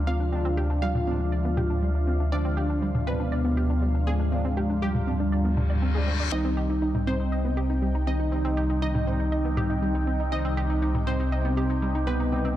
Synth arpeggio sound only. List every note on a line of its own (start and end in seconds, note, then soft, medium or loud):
0.07 0.19 C4 medium
0.20 0.30 D4 medium
0.32 0.42 C4 medium
0.45 0.51 C4 loud
0.57 0.67 G4 medium
0.70 0.80 D4 medium
0.82 0.94 G3 medium
0.95 1.07 D4 medium
1.07 1.19 C4 medium
1.20 1.30 D4 medium
1.32 1.44 D5 medium
1.45 1.57 B3 medium
1.57 1.67 G4 loud
1.70 1.80 D4 medium
1.82 1.94 G3 medium
1.95 2.07 D4 medium
2.07 2.19 C4 medium
2.20 2.30 D4 medium
2.32 2.42 C4 medium
2.45 2.51 C4 medium
2.57 2.67 G4 loud
2.70 2.79 D4 medium
2.82 2.94 G3 medium
2.95 3.07 D4 medium
3.07 3.19 C4 medium
3.20 3.30 D4 medium
3.32 3.44 D5 medium
3.45 3.57 B3 medium
3.57 3.67 G4 loud
3.70 3.80 D4 medium
3.82 3.94 G3 medium
3.95 4.07 D4 medium
4.07 4.19 C4 medium
4.20 4.29 D4 medium
4.32 4.42 C4 medium
4.45 4.51 C4 loud
4.57 4.67 G4 loud
4.70 4.80 D4 medium
4.82 4.94 G3 medium
4.95 5.07 D4 medium
5.07 5.19 C4 medium
5.20 5.30 D4 medium
5.32 5.44 D5 medium
5.45 5.57 B3 medium
5.57 5.67 D4 medium
5.70 5.80 D5 medium
5.82 5.92 C4 medium
5.95 6.01 G#4 medium
6.07 6.17 C4 medium
6.20 6.30 D5 medium
6.32 6.42 C4 medium
6.45 6.51 C4 loud
6.57 6.67 G4 loud
6.70 6.80 D#4 medium
6.82 6.88 D#4 medium
6.95 7.07 D#4 medium
7.07 7.19 C4 medium
7.20 7.30 D#4 medium
7.32 7.44 D#5 medium
7.45 7.57 B3 medium
7.57 7.67 G4 loud
7.70 7.80 D#4 medium
7.82 7.94 G3 medium
7.95 8.07 D#4 medium
8.07 8.19 C4 medium
8.20 8.30 D#4 medium
8.32 8.42 C4 medium
8.45 8.51 C4 loud
8.57 8.67 G4 loud
8.70 8.80 D#4 medium
8.82 8.88 D#4 medium
8.95 9.07 D#4 medium
9.07 9.19 C4 medium
9.20 9.30 D#4 medium
9.32 9.44 D#5 medium
9.45 9.57 B3 medium
9.57 9.67 G4 loud
9.70 9.80 D#4 medium
9.82 9.94 G3 medium
9.95 10.07 D#4 medium
10.07 10.19 C4 medium
10.20 10.30 D#4 medium
10.32 10.42 C4 medium
10.45 10.51 C4 loud
10.57 10.67 G4 loud
10.70 10.80 D#4 medium
10.82 10.88 D#4 medium
10.95 11.07 D#4 medium
11.07 11.19 C4 medium
11.20 11.30 D#4 medium
11.32 11.44 D#5 medium
11.45 11.57 B3 medium
11.57 11.67 G4 medium
11.70 11.80 D#4 medium
11.82 11.94 G3 medium
11.95 12.07 D#4 medium
12.07 12.19 C4 medium
12.20 12.30 D#4 medium
12.32 12.42 C4 medium
12.45 12.51 C4 loud